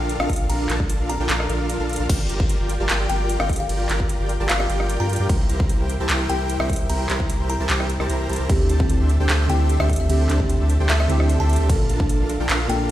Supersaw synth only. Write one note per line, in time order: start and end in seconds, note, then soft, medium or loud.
0.00 0.17 D4 medium
0.00 0.17 F4 medium
0.00 0.17 A4 medium
0.00 0.17 A#4 medium
0.00 0.17 F5 medium
0.20 0.37 D4 loud
0.20 0.37 F4 medium
0.20 0.37 A4 medium
0.20 0.37 A#4 medium
0.20 0.37 F5 loud
0.40 0.47 D4 loud
0.40 0.47 F4 medium
0.40 0.47 A4 loud
0.40 0.47 A#4 medium
0.40 0.47 F5 loud
0.50 0.67 D4 medium
0.50 0.67 F4 medium
0.50 0.67 A4 medium
0.50 0.67 A#4 medium
0.50 0.67 F5 medium
0.70 0.97 D4 medium
0.70 0.97 F4 medium
0.70 0.97 A4 medium
0.70 0.97 A#4 medium
0.70 0.97 A5 loud
1.00 1.11 D4 medium
1.00 1.11 F4 medium
1.00 1.11 A4 medium
1.00 1.11 A#4 medium
1.00 1.11 F5 medium
1.20 1.27 D4 medium
1.20 1.27 F4 medium
1.20 1.27 A4 medium
1.20 1.27 A#4 medium
1.20 1.27 G5 loud
1.29 1.47 D4 medium
1.29 1.47 F4 medium
1.29 1.47 A4 medium
1.29 1.47 A#4 medium
1.29 1.47 F5 medium
1.50 1.77 D4 medium
1.50 1.77 F4 medium
1.50 1.77 A4 medium
1.50 1.77 A#4 medium
1.50 1.77 F5 medium
1.80 1.97 D4 medium
1.80 1.97 F4 medium
1.80 1.97 A4 medium
1.80 1.97 A#4 medium
1.80 1.97 F5 loud
2.00 2.07 D4 loud
2.00 2.07 F4 medium
2.00 2.07 A4 medium
2.00 2.07 A#4 medium
2.00 2.07 F5 loud
2.09 2.27 G4 medium
2.09 2.27 D5 medium
2.09 2.27 G5 medium
2.29 2.57 F4 medium
2.29 2.57 G4 medium
2.29 2.57 A#4 medium
2.29 2.57 D5 medium
2.29 2.57 A#5 loud
2.60 2.71 F4 medium
2.60 2.71 G4 medium
2.60 2.71 A#4 medium
2.60 2.71 D5 medium
2.60 2.71 G5 medium
2.80 2.87 F4 loud
2.80 2.87 G4 medium
2.80 2.87 A#4 medium
2.80 2.87 D5 medium
2.80 2.87 A5 loud
2.89 3.07 F4 medium
2.89 3.07 G4 medium
2.89 3.07 A#4 medium
2.89 3.07 D5 medium
2.89 3.07 G5 medium
3.09 3.37 F4 medium
3.09 3.37 G4 medium
3.09 3.37 A#4 medium
3.09 3.37 D5 medium
3.09 3.37 G5 medium
3.40 3.57 F4 medium
3.40 3.57 G4 medium
3.40 3.57 A#4 medium
3.40 3.57 D5 medium
3.40 3.57 G5 loud
3.60 3.67 F4 loud
3.60 3.67 G4 loud
3.60 3.67 A#4 medium
3.60 3.67 D5 medium
3.60 3.67 G5 loud
3.69 3.87 F4 medium
3.69 3.87 G4 medium
3.69 3.87 A#4 medium
3.69 3.87 D5 medium
3.69 3.87 G5 medium
3.89 4.17 F4 loud
3.89 4.17 G4 medium
3.89 4.17 A#4 medium
3.89 4.17 D5 medium
3.89 4.17 A#5 loud
4.20 4.31 F4 medium
4.20 4.31 G4 medium
4.20 4.31 A#4 medium
4.20 4.31 D5 medium
4.20 4.31 G5 medium
4.40 4.47 F4 loud
4.40 4.47 G4 medium
4.40 4.47 A#4 medium
4.40 4.47 D5 medium
4.40 4.47 A5 loud
4.49 4.67 F4 medium
4.49 4.67 G4 medium
4.49 4.67 A#4 medium
4.49 4.67 D5 medium
4.49 4.67 G5 loud
4.69 4.97 F4 medium
4.69 4.97 G4 medium
4.69 4.97 A#4 medium
4.69 4.97 D5 medium
4.69 4.97 G5 medium
5.00 5.17 F4 loud
5.00 5.17 G4 medium
5.00 5.17 A#4 medium
5.00 5.17 D5 medium
5.00 5.17 G5 loud
5.20 5.27 F4 loud
5.20 5.27 G4 loud
5.20 5.27 A#4 medium
5.20 5.27 D5 loud
5.20 5.27 G5 loud
5.29 5.47 E4 medium
5.29 5.47 G4 medium
5.29 5.47 A#4 medium
5.29 5.47 C5 medium
5.29 5.47 G5 medium
5.49 5.77 E4 medium
5.49 5.77 G4 medium
5.49 5.77 A#4 medium
5.49 5.77 C5 medium
5.49 5.77 A#5 loud
5.80 5.91 E4 medium
5.80 5.91 G4 medium
5.80 5.91 A#4 medium
5.80 5.91 C5 medium
5.80 5.91 G5 medium
6.00 6.07 E4 loud
6.00 6.07 G4 medium
6.00 6.07 A#4 medium
6.00 6.07 C5 medium
6.00 6.07 A5 loud
6.10 6.27 E4 medium
6.10 6.27 G4 medium
6.10 6.27 A#4 medium
6.10 6.27 C5 medium
6.10 6.27 G5 loud
6.29 6.57 E4 medium
6.29 6.57 G4 medium
6.29 6.57 A#4 medium
6.29 6.57 C5 medium
6.29 6.57 G5 medium
6.60 6.77 E4 loud
6.60 6.77 G4 medium
6.60 6.77 A#4 medium
6.60 6.77 C5 medium
6.60 6.77 G5 loud
6.80 6.87 E4 loud
6.80 6.87 G4 loud
6.80 6.87 A#4 medium
6.80 6.87 C5 medium
6.80 6.87 G5 loud
6.89 7.07 E4 medium
6.89 7.07 G4 medium
6.89 7.07 A#4 medium
6.89 7.07 C5 medium
6.89 7.07 G5 medium
7.09 7.37 E4 medium
7.09 7.37 G4 medium
7.09 7.37 A#4 medium
7.09 7.37 C5 medium
7.09 7.37 A#5 loud
7.40 7.51 E4 medium
7.40 7.51 G4 medium
7.40 7.51 A#4 medium
7.40 7.51 C5 medium
7.40 7.51 G5 medium
7.60 7.67 E4 loud
7.60 7.67 G4 medium
7.60 7.67 A#4 medium
7.60 7.67 C5 medium
7.60 7.67 A5 loud
7.69 7.87 E4 medium
7.69 7.87 G4 medium
7.69 7.87 A#4 medium
7.69 7.87 C5 medium
7.69 7.87 G5 loud
8.00 8.08 E4 medium
8.00 8.08 G4 medium
8.00 8.08 A#4 medium
8.00 8.08 C5 medium
8.00 8.08 A5 loud
8.09 8.27 E4 loud
8.09 8.27 G4 medium
8.09 8.27 A#4 medium
8.09 8.27 C5 medium
8.09 8.27 A#5 loud
8.29 8.38 E4 loud
8.29 8.38 G4 medium
8.29 8.38 A#4 medium
8.29 8.38 C5 medium
8.29 8.38 A5 loud
8.40 8.47 E4 medium
8.40 8.47 G4 medium
8.40 8.47 A#4 medium
8.40 8.47 C5 medium
8.40 8.47 A#5 medium
8.50 8.67 D4 medium
8.50 8.67 G4 medium
8.50 8.67 A4 medium
8.50 8.67 E5 medium
8.70 8.97 D4 medium
8.70 8.97 G4 medium
8.70 8.97 A4 medium
8.70 8.97 C5 medium
8.70 8.97 A5 loud
9.00 9.11 D4 medium
9.00 9.11 G4 medium
9.00 9.11 A4 medium
9.00 9.11 C5 medium
9.00 9.11 E5 medium
9.20 9.27 D4 medium
9.20 9.27 G4 medium
9.20 9.27 A4 medium
9.20 9.27 C5 medium
9.20 9.27 G5 loud
9.30 9.47 D4 medium
9.30 9.47 G4 medium
9.30 9.47 A4 medium
9.30 9.47 C5 medium
9.30 9.47 E5 loud
9.49 9.77 D4 medium
9.49 9.77 G4 medium
9.49 9.77 A4 medium
9.49 9.77 C5 medium
9.49 9.77 E5 medium
9.80 9.97 D4 loud
9.80 9.97 G4 medium
9.80 9.97 A4 medium
9.80 9.97 C5 medium
9.80 9.97 E5 loud
10.00 10.07 D4 loud
10.00 10.07 G4 medium
10.00 10.07 A4 medium
10.00 10.07 C5 medium
10.00 10.07 E5 loud
10.09 10.27 D4 medium
10.09 10.27 G4 medium
10.09 10.27 A4 medium
10.09 10.27 C5 medium
10.09 10.27 E5 medium
10.29 10.57 D4 medium
10.29 10.57 G4 medium
10.29 10.57 A4 medium
10.29 10.57 C5 medium
10.29 10.57 A5 loud
10.60 10.71 D4 medium
10.60 10.71 G4 medium
10.60 10.71 A4 medium
10.60 10.71 C5 medium
10.60 10.71 E5 medium
10.80 10.87 D4 loud
10.80 10.87 G4 medium
10.80 10.87 A4 medium
10.80 10.87 C5 medium
10.80 10.87 G5 loud
10.90 11.07 D4 medium
10.90 11.07 G4 medium
10.90 11.07 A4 medium
10.90 11.07 C5 medium
10.90 11.07 E5 loud
11.09 11.37 D4 medium
11.09 11.37 G4 medium
11.09 11.37 A4 medium
11.09 11.37 C5 medium
11.09 11.37 E5 medium
11.40 11.57 D4 loud
11.40 11.57 G4 medium
11.40 11.57 A4 medium
11.40 11.57 C5 medium
11.40 11.57 E5 loud
11.60 11.67 D4 loud
11.60 11.67 G4 loud
11.60 11.67 A4 medium
11.60 11.67 C5 medium
11.60 11.67 E5 loud
11.69 11.87 F4 medium
11.89 12.17 D4 medium
11.89 12.17 F4 medium
11.89 12.17 A4 medium
11.89 12.17 A#4 medium
11.89 12.17 A5 loud
12.20 12.31 D4 medium
12.20 12.31 F4 medium
12.20 12.31 A4 medium
12.20 12.31 A#4 medium
12.20 12.31 F5 medium
12.40 12.47 D4 loud
12.40 12.47 F4 medium
12.40 12.47 A4 medium
12.40 12.47 A#4 medium
12.40 12.47 G5 loud
12.49 12.67 D4 medium
12.49 12.67 F4 medium
12.49 12.67 A4 medium
12.49 12.67 A#4 medium
12.49 12.67 F5 loud
12.70 12.91 D4 medium
12.70 12.91 F4 medium
12.70 12.91 A4 medium
12.70 12.91 A#4 medium
12.70 12.91 F5 medium